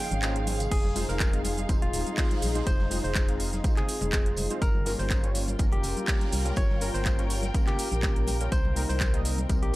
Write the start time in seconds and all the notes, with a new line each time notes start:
Already playing: F3 A#3 C#4 D#4 G#4 D#5 F5 G5 C6
0.11 G#1, closed hi-hat, muted conga, high conga, shaker
0.22 F3 A#3 C#4 D#4 C5, snare, clap, closed hi-hat, tambourine, shaker
0.36 closed hi-hat
0.47 open hi-hat, muted conga, high conga, shaker
0.60 closed hi-hat, tambourine, low conga, shaker
0.71 F1 D#4 G#4 D#5, kick, closed hi-hat, crash, tambourine, shaker
0.84 high conga, low conga
0.95 G#3 C4 D#4 F4 C5, open hi-hat, tambourine, shaker
1.09 F1 A#4, closed hi-hat, muted conga, shaker
1.20 kick, snare, clap, closed hi-hat, tambourine, high conga, shaker
1.33 G#3 C4 D#4 F4 F5, closed hi-hat
1.44 open hi-hat, tambourine, muted conga, shaker
1.58 closed hi-hat, high conga, shaker
1.69 F1 G#3 C4 D#4 F4 C5, kick, closed hi-hat, tambourine, shaker
1.82 D#1 F4, closed hi-hat
1.93 D#1, snare, open hi-hat, tambourine, muted conga, shaker
2.07 closed hi-hat, high conga, shaker
2.17 G#3 C4 D#4 F4 C5, kick, snare, clap, closed hi-hat, open hi-hat, shaker
2.30 snare, closed hi-hat, muted conga
2.42 A#1, open hi-hat, tambourine, high conga, shaker
2.55 G#3 C4 D#4 F4 C5, closed hi-hat, shaker
2.67 F1 C5 G5, kick, closed hi-hat, tambourine, shaker
2.80 snare, muted conga, high conga, low conga
2.90 G#3 C4 D#4 F4 C5, open hi-hat, tambourine, shaker
3.04 F1 C5, shaker
3.15 kick, snare, clap, closed hi-hat, tambourine, muted conga, high conga, shaker
3.28 G#3 C4 D#4 F4 F5, snare, closed hi-hat
3.40 snare, open hi-hat, tambourine, shaker
3.53 snare, high conga, shaker
3.64 G#3 C4 D#4 F4 C5, kick, closed hi-hat, tambourine, muted conga, shaker
3.77 G#4, snare, clap, closed hi-hat, low conga
3.89 open hi-hat, tambourine, shaker
4.01 F1, closed hi-hat, muted conga, high conga, shaker
4.12 G#3 C4 D#4 F4 C5, kick, snare, clap, closed hi-hat, tambourine, shaker
4.26 closed hi-hat
4.36 F1, open hi-hat, tambourine, high conga, shaker
4.50 G#3 C4 D#4 F4 C5, closed hi-hat, muted conga, shaker
4.62 G1 F4 A#4 F5 A#5, kick, closed hi-hat, tambourine, shaker
4.74 high conga, low conga
4.83 G3 A#3 C#4 F4 A#4, open hi-hat, tambourine, muted conga, shaker
4.99 G1 C5, closed hi-hat, shaker
5.10 kick, snare, clap, closed hi-hat, tambourine, high conga, shaker
5.23 G3 A#3 C#4 F4 C#5, closed hi-hat
5.35 open hi-hat, tambourine, muted conga, shaker
5.48 G5, high conga, shaker
5.59 G1 G3 A#3 C#4 F4 A#4, kick, closed hi-hat, tambourine, shaker
5.72 F1 G4, closed hi-hat, muted conga
5.83 F1, snare, open hi-hat, tambourine, shaker
5.97 closed hi-hat, high conga, shaker
6.08 G3 A#3 C#4 F4 A#4, kick, snare, clap, closed hi-hat, open hi-hat, shaker
6.21 snare, closed hi-hat, muted conga
6.32 C2, open hi-hat, tambourine, high conga, shaker
6.45 G3 A#3 C#4 F4 A#4, closed hi-hat, shaker
6.56 G1 C#5, kick, closed hi-hat, tambourine, muted conga, shaker
6.70 snare, high conga, low conga
6.81 G3 A#3 C#4 F4 A#4, open hi-hat, tambourine, shaker
6.94 G1 C5, shaker
7.05 kick, snare, clap, closed hi-hat, tambourine, muted conga, high conga, shaker
7.18 G3 A#3 C#4 F4 C#5, snare, closed hi-hat
7.30 snare, open hi-hat, tambourine, shaker
7.42 snare, closed hi-hat, muted conga, high conga, shaker
7.54 G3 A#3 C#4 F4 A#4, kick, closed hi-hat, tambourine, shaker
7.67 G4, snare, clap, closed hi-hat, low conga
7.79 open hi-hat, tambourine, shaker
7.92 A#1, closed hi-hat, muted conga, high conga, shaker
8.03 G3 A#3 C#4 F4 A#4, kick, snare, clap, closed hi-hat, tambourine, shaker
8.16 closed hi-hat
8.27 open hi-hat, tambourine, muted conga, high conga, shaker
8.40 G3 A#3 C#4 F4 A#4, closed hi-hat, shaker
8.52 C2 C4 C5 D#5 G5 C6, kick, closed hi-hat, tambourine, shaker
8.65 high conga, low conga
8.76 G3 A#3 C4 D#4 A#4, open hi-hat, tambourine, shaker
8.89 C2 C5, closed hi-hat, muted conga, shaker
9.00 kick, snare, clap, closed hi-hat, tambourine, high conga, shaker
9.13 G3 A#3 C4 D#4 D#5, closed hi-hat
9.25 open hi-hat, tambourine, muted conga, shaker
9.38 closed hi-hat, high conga, shaker
9.49 C2 G3 A#3 C4 D#4 A#4, kick, closed hi-hat, tambourine, shaker
9.63 A#1 G4 D#5, closed hi-hat